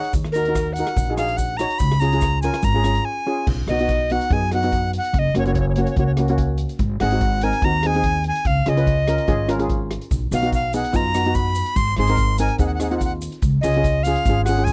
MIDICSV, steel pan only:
0, 0, Header, 1, 2, 480
1, 0, Start_track
1, 0, Tempo, 415512
1, 162, Time_signature, 4, 2, 24, 8
1, 17013, End_track
2, 0, Start_track
2, 0, Title_t, "Steel pan"
2, 0, Program_c, 0, 114
2, 0, Note_on_c, 0, 63, 77
2, 0, Note_on_c, 0, 68, 75
2, 0, Note_on_c, 0, 73, 89
2, 166, Note_off_c, 0, 63, 0
2, 167, Note_off_c, 0, 68, 0
2, 171, Note_off_c, 0, 73, 0
2, 411, Note_on_c, 0, 63, 70
2, 416, Note_on_c, 0, 66, 66
2, 419, Note_on_c, 0, 70, 87
2, 482, Note_off_c, 0, 63, 0
2, 485, Note_off_c, 0, 66, 0
2, 487, Note_off_c, 0, 70, 0
2, 556, Note_on_c, 0, 63, 73
2, 567, Note_on_c, 0, 66, 68
2, 567, Note_on_c, 0, 70, 83
2, 758, Note_off_c, 0, 63, 0
2, 763, Note_off_c, 0, 66, 0
2, 764, Note_off_c, 0, 70, 0
2, 912, Note_on_c, 0, 63, 71
2, 919, Note_on_c, 0, 66, 72
2, 928, Note_on_c, 0, 70, 77
2, 1116, Note_off_c, 0, 63, 0
2, 1120, Note_off_c, 0, 66, 0
2, 1124, Note_off_c, 0, 70, 0
2, 1270, Note_on_c, 0, 63, 77
2, 1272, Note_on_c, 0, 66, 71
2, 1280, Note_on_c, 0, 68, 79
2, 1330, Note_off_c, 0, 63, 0
2, 1331, Note_off_c, 0, 66, 0
2, 1335, Note_off_c, 0, 68, 0
2, 1358, Note_on_c, 0, 63, 68
2, 1366, Note_on_c, 0, 66, 62
2, 1375, Note_on_c, 0, 68, 83
2, 1653, Note_off_c, 0, 63, 0
2, 1657, Note_off_c, 0, 66, 0
2, 1662, Note_off_c, 0, 68, 0
2, 1849, Note_on_c, 0, 63, 71
2, 1852, Note_on_c, 0, 66, 70
2, 1861, Note_on_c, 0, 73, 85
2, 2089, Note_off_c, 0, 63, 0
2, 2090, Note_off_c, 0, 66, 0
2, 2095, Note_off_c, 0, 73, 0
2, 2327, Note_on_c, 0, 61, 78
2, 2332, Note_on_c, 0, 65, 73
2, 2339, Note_on_c, 0, 68, 85
2, 2404, Note_off_c, 0, 61, 0
2, 2406, Note_off_c, 0, 65, 0
2, 2410, Note_off_c, 0, 68, 0
2, 2457, Note_on_c, 0, 61, 75
2, 2466, Note_on_c, 0, 65, 69
2, 2475, Note_on_c, 0, 68, 89
2, 2672, Note_off_c, 0, 61, 0
2, 2676, Note_off_c, 0, 65, 0
2, 2681, Note_off_c, 0, 68, 0
2, 2820, Note_on_c, 0, 65, 72
2, 2821, Note_on_c, 0, 61, 83
2, 2823, Note_on_c, 0, 70, 87
2, 3033, Note_off_c, 0, 65, 0
2, 3034, Note_off_c, 0, 61, 0
2, 3035, Note_off_c, 0, 70, 0
2, 3169, Note_on_c, 0, 65, 65
2, 3173, Note_on_c, 0, 61, 78
2, 3184, Note_on_c, 0, 68, 92
2, 3242, Note_off_c, 0, 65, 0
2, 3244, Note_off_c, 0, 61, 0
2, 3249, Note_off_c, 0, 68, 0
2, 3285, Note_on_c, 0, 61, 77
2, 3286, Note_on_c, 0, 65, 60
2, 3287, Note_on_c, 0, 68, 75
2, 3579, Note_off_c, 0, 61, 0
2, 3580, Note_off_c, 0, 65, 0
2, 3580, Note_off_c, 0, 68, 0
2, 3772, Note_on_c, 0, 61, 86
2, 3778, Note_on_c, 0, 65, 74
2, 3779, Note_on_c, 0, 68, 90
2, 4013, Note_off_c, 0, 61, 0
2, 4016, Note_off_c, 0, 65, 0
2, 4016, Note_off_c, 0, 68, 0
2, 4275, Note_on_c, 0, 59, 79
2, 4286, Note_on_c, 0, 63, 73
2, 4288, Note_on_c, 0, 66, 86
2, 4340, Note_off_c, 0, 59, 0
2, 4345, Note_off_c, 0, 63, 0
2, 4346, Note_off_c, 0, 66, 0
2, 4394, Note_on_c, 0, 63, 71
2, 4395, Note_on_c, 0, 59, 79
2, 4398, Note_on_c, 0, 66, 88
2, 4602, Note_off_c, 0, 59, 0
2, 4602, Note_off_c, 0, 63, 0
2, 4604, Note_off_c, 0, 66, 0
2, 4750, Note_on_c, 0, 59, 77
2, 4756, Note_on_c, 0, 66, 87
2, 4761, Note_on_c, 0, 63, 72
2, 4890, Note_off_c, 0, 59, 0
2, 4894, Note_off_c, 0, 66, 0
2, 4896, Note_off_c, 0, 63, 0
2, 4981, Note_on_c, 0, 59, 81
2, 4985, Note_on_c, 0, 63, 69
2, 4994, Note_on_c, 0, 68, 81
2, 5126, Note_off_c, 0, 59, 0
2, 5128, Note_off_c, 0, 63, 0
2, 5132, Note_off_c, 0, 68, 0
2, 5240, Note_on_c, 0, 59, 70
2, 5243, Note_on_c, 0, 63, 68
2, 5255, Note_on_c, 0, 66, 81
2, 5303, Note_off_c, 0, 59, 0
2, 5304, Note_off_c, 0, 63, 0
2, 5310, Note_off_c, 0, 66, 0
2, 5357, Note_on_c, 0, 59, 88
2, 5361, Note_on_c, 0, 63, 75
2, 5367, Note_on_c, 0, 66, 85
2, 5851, Note_off_c, 0, 59, 0
2, 5853, Note_off_c, 0, 63, 0
2, 5856, Note_off_c, 0, 66, 0
2, 6188, Note_on_c, 0, 58, 82
2, 6192, Note_on_c, 0, 66, 84
2, 6195, Note_on_c, 0, 61, 79
2, 6256, Note_off_c, 0, 58, 0
2, 6259, Note_off_c, 0, 66, 0
2, 6260, Note_off_c, 0, 61, 0
2, 6316, Note_on_c, 0, 58, 83
2, 6322, Note_on_c, 0, 66, 84
2, 6323, Note_on_c, 0, 61, 78
2, 6523, Note_off_c, 0, 58, 0
2, 6526, Note_off_c, 0, 61, 0
2, 6526, Note_off_c, 0, 66, 0
2, 6670, Note_on_c, 0, 58, 80
2, 6682, Note_on_c, 0, 61, 82
2, 6682, Note_on_c, 0, 66, 88
2, 6811, Note_off_c, 0, 58, 0
2, 6816, Note_off_c, 0, 61, 0
2, 6816, Note_off_c, 0, 66, 0
2, 6917, Note_on_c, 0, 58, 71
2, 6921, Note_on_c, 0, 61, 74
2, 6921, Note_on_c, 0, 66, 86
2, 7054, Note_off_c, 0, 58, 0
2, 7056, Note_off_c, 0, 61, 0
2, 7056, Note_off_c, 0, 66, 0
2, 7145, Note_on_c, 0, 58, 76
2, 7152, Note_on_c, 0, 61, 77
2, 7156, Note_on_c, 0, 66, 87
2, 7215, Note_off_c, 0, 58, 0
2, 7218, Note_off_c, 0, 61, 0
2, 7220, Note_off_c, 0, 66, 0
2, 7269, Note_on_c, 0, 58, 93
2, 7271, Note_on_c, 0, 61, 96
2, 7276, Note_on_c, 0, 66, 103
2, 7767, Note_off_c, 0, 58, 0
2, 7768, Note_off_c, 0, 61, 0
2, 7770, Note_off_c, 0, 66, 0
2, 8105, Note_on_c, 0, 60, 75
2, 8108, Note_on_c, 0, 63, 77
2, 8118, Note_on_c, 0, 68, 92
2, 8174, Note_off_c, 0, 60, 0
2, 8176, Note_off_c, 0, 63, 0
2, 8181, Note_off_c, 0, 68, 0
2, 8226, Note_on_c, 0, 60, 85
2, 8226, Note_on_c, 0, 63, 76
2, 8237, Note_on_c, 0, 66, 87
2, 8437, Note_off_c, 0, 60, 0
2, 8437, Note_off_c, 0, 63, 0
2, 8443, Note_off_c, 0, 66, 0
2, 8583, Note_on_c, 0, 60, 80
2, 8588, Note_on_c, 0, 70, 100
2, 8589, Note_on_c, 0, 63, 78
2, 8727, Note_off_c, 0, 60, 0
2, 8729, Note_off_c, 0, 63, 0
2, 8729, Note_off_c, 0, 70, 0
2, 8827, Note_on_c, 0, 60, 73
2, 8833, Note_on_c, 0, 63, 67
2, 8839, Note_on_c, 0, 66, 80
2, 8968, Note_off_c, 0, 60, 0
2, 8971, Note_off_c, 0, 63, 0
2, 8974, Note_off_c, 0, 66, 0
2, 9070, Note_on_c, 0, 60, 74
2, 9075, Note_on_c, 0, 63, 68
2, 9082, Note_on_c, 0, 68, 89
2, 9136, Note_off_c, 0, 60, 0
2, 9139, Note_off_c, 0, 63, 0
2, 9142, Note_off_c, 0, 68, 0
2, 9189, Note_on_c, 0, 60, 84
2, 9197, Note_on_c, 0, 63, 76
2, 9199, Note_on_c, 0, 68, 94
2, 9686, Note_off_c, 0, 60, 0
2, 9689, Note_off_c, 0, 63, 0
2, 9691, Note_off_c, 0, 68, 0
2, 10012, Note_on_c, 0, 61, 85
2, 10015, Note_on_c, 0, 65, 73
2, 10026, Note_on_c, 0, 68, 90
2, 10087, Note_off_c, 0, 61, 0
2, 10088, Note_off_c, 0, 65, 0
2, 10094, Note_off_c, 0, 68, 0
2, 10129, Note_on_c, 0, 61, 79
2, 10134, Note_on_c, 0, 65, 76
2, 10138, Note_on_c, 0, 71, 90
2, 10347, Note_off_c, 0, 61, 0
2, 10350, Note_off_c, 0, 65, 0
2, 10352, Note_off_c, 0, 71, 0
2, 10493, Note_on_c, 0, 65, 73
2, 10494, Note_on_c, 0, 61, 78
2, 10495, Note_on_c, 0, 70, 89
2, 10640, Note_off_c, 0, 61, 0
2, 10640, Note_off_c, 0, 65, 0
2, 10641, Note_off_c, 0, 70, 0
2, 10720, Note_on_c, 0, 61, 85
2, 10720, Note_on_c, 0, 65, 82
2, 10726, Note_on_c, 0, 68, 110
2, 10873, Note_off_c, 0, 61, 0
2, 10873, Note_off_c, 0, 65, 0
2, 10876, Note_off_c, 0, 68, 0
2, 10956, Note_on_c, 0, 65, 84
2, 10960, Note_on_c, 0, 61, 92
2, 10969, Note_on_c, 0, 70, 95
2, 11038, Note_off_c, 0, 65, 0
2, 11040, Note_off_c, 0, 61, 0
2, 11045, Note_off_c, 0, 70, 0
2, 11079, Note_on_c, 0, 61, 88
2, 11088, Note_on_c, 0, 68, 95
2, 11089, Note_on_c, 0, 65, 81
2, 11589, Note_off_c, 0, 61, 0
2, 11593, Note_off_c, 0, 68, 0
2, 11594, Note_off_c, 0, 65, 0
2, 11931, Note_on_c, 0, 63, 71
2, 11933, Note_on_c, 0, 59, 83
2, 11938, Note_on_c, 0, 66, 89
2, 12005, Note_off_c, 0, 63, 0
2, 12006, Note_off_c, 0, 59, 0
2, 12008, Note_off_c, 0, 66, 0
2, 12041, Note_on_c, 0, 59, 81
2, 12046, Note_on_c, 0, 63, 77
2, 12052, Note_on_c, 0, 66, 93
2, 12262, Note_off_c, 0, 59, 0
2, 12264, Note_off_c, 0, 63, 0
2, 12267, Note_off_c, 0, 66, 0
2, 12405, Note_on_c, 0, 59, 80
2, 12408, Note_on_c, 0, 68, 85
2, 12410, Note_on_c, 0, 63, 74
2, 12554, Note_off_c, 0, 59, 0
2, 12556, Note_off_c, 0, 68, 0
2, 12557, Note_off_c, 0, 63, 0
2, 12625, Note_on_c, 0, 59, 79
2, 12630, Note_on_c, 0, 63, 75
2, 12638, Note_on_c, 0, 65, 81
2, 12784, Note_off_c, 0, 59, 0
2, 12787, Note_off_c, 0, 63, 0
2, 12790, Note_off_c, 0, 65, 0
2, 12873, Note_on_c, 0, 59, 72
2, 12876, Note_on_c, 0, 63, 67
2, 12889, Note_on_c, 0, 66, 78
2, 12955, Note_off_c, 0, 59, 0
2, 12956, Note_off_c, 0, 63, 0
2, 12963, Note_off_c, 0, 66, 0
2, 13006, Note_on_c, 0, 59, 76
2, 13012, Note_on_c, 0, 63, 75
2, 13019, Note_on_c, 0, 66, 89
2, 13511, Note_off_c, 0, 59, 0
2, 13514, Note_off_c, 0, 63, 0
2, 13517, Note_off_c, 0, 66, 0
2, 13847, Note_on_c, 0, 60, 77
2, 13849, Note_on_c, 0, 63, 72
2, 13855, Note_on_c, 0, 68, 89
2, 13921, Note_off_c, 0, 60, 0
2, 13922, Note_off_c, 0, 63, 0
2, 13925, Note_off_c, 0, 68, 0
2, 13966, Note_on_c, 0, 60, 83
2, 13970, Note_on_c, 0, 63, 81
2, 13973, Note_on_c, 0, 70, 97
2, 14182, Note_off_c, 0, 60, 0
2, 14184, Note_off_c, 0, 63, 0
2, 14186, Note_off_c, 0, 70, 0
2, 14314, Note_on_c, 0, 60, 77
2, 14321, Note_on_c, 0, 63, 79
2, 14322, Note_on_c, 0, 70, 93
2, 14467, Note_off_c, 0, 60, 0
2, 14470, Note_off_c, 0, 63, 0
2, 14470, Note_off_c, 0, 70, 0
2, 14547, Note_on_c, 0, 60, 79
2, 14555, Note_on_c, 0, 63, 79
2, 14555, Note_on_c, 0, 68, 88
2, 14703, Note_off_c, 0, 60, 0
2, 14707, Note_off_c, 0, 63, 0
2, 14707, Note_off_c, 0, 68, 0
2, 14786, Note_on_c, 0, 60, 74
2, 14791, Note_on_c, 0, 63, 78
2, 14796, Note_on_c, 0, 68, 81
2, 14869, Note_off_c, 0, 60, 0
2, 14871, Note_off_c, 0, 63, 0
2, 14874, Note_off_c, 0, 68, 0
2, 14914, Note_on_c, 0, 60, 78
2, 14920, Note_on_c, 0, 63, 78
2, 14920, Note_on_c, 0, 65, 89
2, 15422, Note_off_c, 0, 60, 0
2, 15425, Note_off_c, 0, 63, 0
2, 15425, Note_off_c, 0, 65, 0
2, 15756, Note_on_c, 0, 61, 87
2, 15758, Note_on_c, 0, 68, 97
2, 15759, Note_on_c, 0, 65, 76
2, 15833, Note_off_c, 0, 61, 0
2, 15834, Note_off_c, 0, 65, 0
2, 15834, Note_off_c, 0, 68, 0
2, 15902, Note_on_c, 0, 61, 85
2, 15903, Note_on_c, 0, 65, 75
2, 15915, Note_on_c, 0, 68, 91
2, 16107, Note_off_c, 0, 61, 0
2, 16108, Note_off_c, 0, 65, 0
2, 16114, Note_off_c, 0, 68, 0
2, 16249, Note_on_c, 0, 61, 80
2, 16251, Note_on_c, 0, 65, 76
2, 16262, Note_on_c, 0, 68, 100
2, 16392, Note_off_c, 0, 61, 0
2, 16392, Note_off_c, 0, 65, 0
2, 16398, Note_off_c, 0, 68, 0
2, 16502, Note_on_c, 0, 61, 75
2, 16507, Note_on_c, 0, 65, 75
2, 16517, Note_on_c, 0, 68, 91
2, 16638, Note_off_c, 0, 61, 0
2, 16640, Note_off_c, 0, 65, 0
2, 16646, Note_off_c, 0, 68, 0
2, 16740, Note_on_c, 0, 61, 80
2, 16742, Note_on_c, 0, 65, 74
2, 16742, Note_on_c, 0, 68, 85
2, 16804, Note_off_c, 0, 61, 0
2, 16805, Note_off_c, 0, 65, 0
2, 16805, Note_off_c, 0, 68, 0
2, 16839, Note_on_c, 0, 61, 80
2, 16847, Note_on_c, 0, 65, 72
2, 16851, Note_on_c, 0, 68, 88
2, 17013, Note_off_c, 0, 61, 0
2, 17013, Note_off_c, 0, 65, 0
2, 17013, Note_off_c, 0, 68, 0
2, 17013, End_track
0, 0, End_of_file